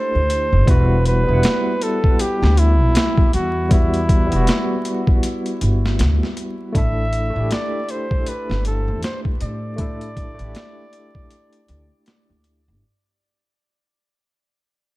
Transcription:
Already playing: A3 D4 E4 G4 C5
0.15 D2
0.30 closed hi-hat
0.53 G1
0.66 E1 G3 B3 E4 B4, kick, closed hi-hat
0.71 F#4
1.05 B4, closed hi-hat
1.23 G3 B3
1.29 E1 E4
1.33 F#5
1.43 snare, closed hi-hat
1.81 A4, closed hi-hat
2.04 kick
2.19 G4, closed hi-hat
2.42 D2, snare
2.57 E4, closed hi-hat
2.80 B1
2.95 snare, closed hi-hat
3.18 kick
3.33 E2 F#4, closed hi-hat
3.69 G3 B3 E4, kick, closed hi-hat
3.74 F#4
3.94 closed hi-hat
4.09 kick, closed hi-hat
4.26 G3 B3
4.32 E1 E4, closed hi-hat
4.36 F#4
4.47 snare, closed hi-hat
4.85 closed hi-hat
5.07 kick
5.23 closed hi-hat
5.46 closed hi-hat
5.61 G1, closed hi-hat
5.86 snare
5.99 D2, snare, closed hi-hat
6.23 snare
6.37 closed hi-hat
6.72 A1 A3 D4 E4, kick, closed hi-hat
6.77 A4 E5
7.13 closed hi-hat
7.30 A3 D4
7.36 A1 E4
7.40 G4
7.51 D5, snare, closed hi-hat
7.89 C5, closed hi-hat
8.11 kick
8.26 B4, closed hi-hat
8.50 G1, snare
8.65 A4, closed hi-hat
8.88 E2
9.03 C5, snare, closed hi-hat
9.25 kick
9.41 A2 D5, closed hi-hat
9.76 A3 D4 E4, kick, closed hi-hat
9.81 A4
10.01 closed hi-hat
10.17 kick, closed hi-hat
10.35 A3 D4
10.39 A1 E4, closed hi-hat
10.44 G4
10.55 snare, closed hi-hat
10.93 closed hi-hat
11.15 kick
11.30 closed hi-hat
11.53 closed hi-hat
11.68 D2, closed hi-hat
12.06 snare, closed hi-hat
12.30 D2
12.44 closed hi-hat
12.68 G1

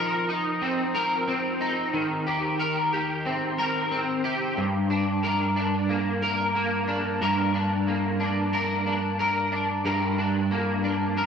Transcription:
Already playing: F3 C4 D#4 A#4
0.29 D#4
0.62 C4
0.95 A#4
1.28 C4
1.61 D#4
1.94 D#3
2.27 G4
2.59 A#4
2.93 G4
3.25 C4
3.58 A#4
3.91 C4
4.24 G4
4.57 G2
4.90 D4
5.23 A#4
5.56 D4
5.89 A#3
6.22 A#4
6.55 A#3
6.88 D4
7.21 G2 A#4
7.54 D4
7.87 A#3
8.20 D4
8.53 A#4
8.86 D4
9.19 A#4
9.52 D4
9.85 G2 A#4
10.18 D4
10.51 A#3
10.84 D4
11.17 A#4

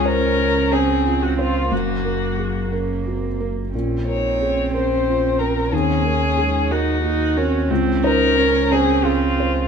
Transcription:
Already playing: C#2 C#4
0.05 A#4 C5
0.39 A#4
0.72 C4 G#4 C5
1.05 F4
1.22 F#4
1.38 F4 C5
1.71 F#1 F#2 A#3 F#4
2.05 A#4
2.39 G#4
2.71 C#4 A#4
3.06 C4 F#4
3.40 A#3 A#4
3.73 A#1 A#2 C4 C#4
4.07 D#4 A#4 C#5
4.40 C#4 G#4
4.73 A#4 C5
5.07 F4
5.39 A#4
5.72 D#2 C4 C#4 G#4
6.04 A#3 A#4
6.37 G#3 G#4
6.71 A#3 D#4 F#4 A#4
7.03 A#3 D#4 F#4
7.36 C4 C#4 A#4
7.69 C#2 C4 C#4
8.04 D#4 A#4 C5
8.37 C#4 A#4
8.71 C4 G#4 C5
9.04 F4 G#4
9.40 C5

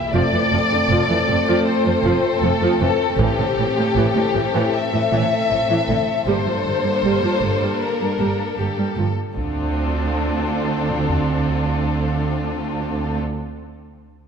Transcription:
Already playing: A#3 E4 G4 E5
0.14 F1 F2 F3 A3 C4 A4 D5
0.32 F2 E3
0.52 F1 F2 F3
0.72 F2 D3
0.90 F1 F2 F3
1.10 F2 E3
1.28 F1 F2 F3
1.48 F2 F3
1.66 C5
1.85 F2 F3
2.04 F1 F2 F3
2.42 F1 F2 F3 A4
2.61 F2 F3
2.80 F1 F2 E3 A4
3.18 A1 A2 E3 G4, taiko
3.39 A2 D3
3.57 A1 A2 E3
3.77 A2 C3
3.96 A1 A2 E3
4.15 A2 D3
4.34 A1 A2 E3
4.53 A2 E3
4.73 E5
4.93 A2 E3
5.11 A1 A2 E3
5.50 A1 A2 E3
5.69 A2 E3
5.88 A1 A2 D3
6.27 G1 G2 G3 A#3 D4 A4 C5
6.46 G2 F3
6.65 G1 G2 G3
6.84 G2 D3
7.03 G1 G2 G3
7.22 G2 F3
7.42 G1 G2 G3
7.61 G2 G3
7.81 A#4
8.00 G2 G3
8.19 G1 G2 G3
8.57 G1 G2 G3 G4
8.77 G2 G3
8.97 G1 G2 F3
9.35 D2 C4 D4 F4 A4, taiko
10.91 taiko mid
11.09 taiko low

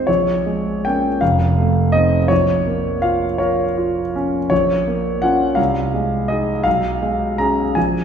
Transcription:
Already playing: G#3 C4 D#4 G#4 C5
0.07 A#1 C#5
0.46 G#3
0.85 A#3 C#4 G5
1.21 F1 F5
1.58 A3
1.92 C4 D#4 D#5
2.28 A#1 C#5
2.67 A#3
3.02 F4 F5
3.38 A#4 C#5
3.78 F4
4.16 C#4
4.50 A#1 C#5
4.87 A#3
5.22 C#4 F4 F#5
5.55 C2 F5
5.94 G#3
6.28 D#4 G#4 D#5
6.64 B1 F5
7.02 G#3
7.38 C#4 G#4 A#5
7.75 A#1 G#5

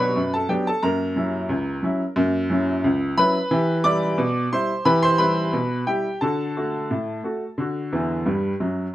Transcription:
Already playing: B2 F#3 B3 D4 C#5 C#6
0.00 B4 B5
0.16 F#2
0.34 A4 A5
0.49 F#3 B3 D4 G4 G5
0.67 A4 A5
0.83 F#2 A#3 A#4 A#5
1.16 F#3 C#4 E4
1.49 C#2
1.83 F#3 C#4 E4
2.16 F#2 A#3
2.50 F#3 C#4 E4
2.84 C#2
3.18 F#3 C#4 E4 B4 B5
3.51 E3 G4
3.84 G3 E4 D5 D6
4.18 B2
4.52 G3 E4 C5 C6
4.85 E3 G4 B4 B5
5.03 C5 C6
5.18 G3 E4 B4 B5
5.53 B2
5.87 G3 E4 G4 G5
6.21 D3 F#4 A4 A5
6.57 A3 F#4 A4
6.91 A2
7.24 A3 F#4 A4
7.58 D3 F#4
7.93 E2 E3
8.26 G2 G3
8.60 F#2 F#3

